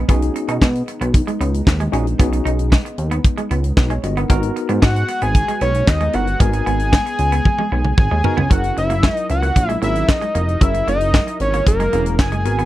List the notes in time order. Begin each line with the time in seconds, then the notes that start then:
0.08 B1 G#3 B3 C#4 D#4 F#4 G#4, kick, closed hi-hat
0.22 closed hi-hat
0.35 muted clean electric guitar stroke, closed hi-hat
0.48 B2 D#4, closed hi-hat
0.61 B2 G#3, kick, snare, clap
0.75 closed hi-hat
0.88 muted clean electric guitar stroke, closed hi-hat
1.01 B1 B3, closed hi-hat
1.14 muted clean electric guitar stroke, kick, closed hi-hat
1.27 G#3, closed hi-hat
1.41 C#2 B3, closed hi-hat
1.54 closed hi-hat
1.67 D#2, muted clean electric guitar stroke, kick, snare, clap
1.80 G#3, closed hi-hat
1.92 A#1 C#4 D#4 F#4 G#4, closed hi-hat
2.07 closed hi-hat
2.19 B1 B3 C#4 D#4 F#4 G#4, kick, closed hi-hat
2.33 muted clean electric guitar stroke, closed hi-hat
2.45 B1 D#4, closed hi-hat
2.59 closed hi-hat
2.72 G#3, kick, snare, clap
2.85 muted clean electric guitar stroke, closed hi-hat
2.98 D#2, closed hi-hat
3.11 B3, closed hi-hat
3.24 muted clean electric guitar stroke, kick, closed hi-hat
3.38 G#3, closed hi-hat
3.51 C#2 B3, closed hi-hat
3.64 closed hi-hat
3.77 B1 D#4 B4, kick, snare, clap
3.90 G#3 C#5, closed hi-hat
4.03 G1 F#4 D#5, muted clean electric guitar stroke, closed hi-hat
4.17 B3 A#4 F#5, closed hi-hat
4.29 G#1 G#3 B3 D#4 F#4 A#4, kick, closed hi-hat
4.43 closed hi-hat
4.56 muted clean electric guitar stroke, closed hi-hat
4.69 G#2 B3, closed hi-hat
4.82 G#2 G#3 F#5, kick, snare, clap
4.96 closed hi-hat
5.08 muted clean electric guitar stroke, closed hi-hat
5.21 G#1 B3 G#5, closed hi-hat
5.35 muted clean electric guitar stroke, kick, closed hi-hat
5.48 G#3, closed hi-hat
5.61 B1 B3 C#5, closed hi-hat
5.74 closed hi-hat
5.87 D#2 D#5, muted clean electric guitar stroke, kick, snare, clap
6.00 G#3, closed hi-hat
6.13 G1 B3 D#4 F#4 A#4 F#5, closed hi-hat
6.27 closed hi-hat
6.40 G#1 G#3 B3 D#4 F#4 G#4 A#4 G#5, kick, closed hi-hat
6.53 muted clean electric guitar stroke, closed hi-hat
6.66 G#1 B3, closed hi-hat
6.79 closed hi-hat
6.92 G#3, kick, snare, clap
7.06 muted clean electric guitar stroke, closed hi-hat
7.18 C#2, closed hi-hat
7.32 B3, closed hi-hat
7.45 muted clean electric guitar stroke, kick, high tom
7.58 G#3, high tom
7.72 B1 B3
7.85 mid tom
7.98 G#1 G#5, kick, mid tom
8.11 D#2 G#3
8.24 B3 D#4 F#4 A#4, muted clean electric guitar stroke, floor tom
8.37 C#2 B3, floor tom
8.50 F#1 F#3 C#4 E4 G#4 A#4 F#5, kick, closed hi-hat
8.64 closed hi-hat
8.77 F#1 E5, muted clean electric guitar stroke, closed hi-hat
8.90 A#3, closed hi-hat
9.03 G#3, kick, snare, clap
9.14 D#5, closed hi-hat
9.29 C#2 F#5, muted clean electric guitar stroke, closed hi-hat
9.43 A#3, closed hi-hat
9.56 A#1, muted clean electric guitar stroke, kick, closed hi-hat
9.69 G#3, closed hi-hat
9.82 G#1 A#3 C#4 E4 G#4 A#4 E5, closed hi-hat
9.95 closed hi-hat
10.08 D#5, muted clean electric guitar stroke, kick, snare, clap
10.21 G#3, closed hi-hat
10.35 F1 A#3, closed hi-hat
10.48 closed hi-hat
10.61 F#1 F#3 C#4 E4 G#4 A#4 E5, kick, closed hi-hat
10.74 muted clean electric guitar stroke, closed hi-hat
10.88 F#1 A#3 D#5, closed hi-hat
11.01 closed hi-hat
11.14 G#3, kick, snare, clap
11.27 muted clean electric guitar stroke, closed hi-hat
11.40 G#1 C#5, closed hi-hat
11.53 A#3, closed hi-hat
11.67 F#1 A#4, muted clean electric guitar stroke, kick, closed hi-hat
11.80 G#3, closed hi-hat
11.92 E1 A#3 C#4 E4 G#4 A4, closed hi-hat
11.99 A#4
12.06 closed hi-hat
12.19 F#1 G#5, kick, snare, clap
12.32 G#3, closed hi-hat
12.45 G#1 D#3 G#3 B3 F#4 A#4, muted clean electric guitar stroke, closed hi-hat
12.59 B3, closed hi-hat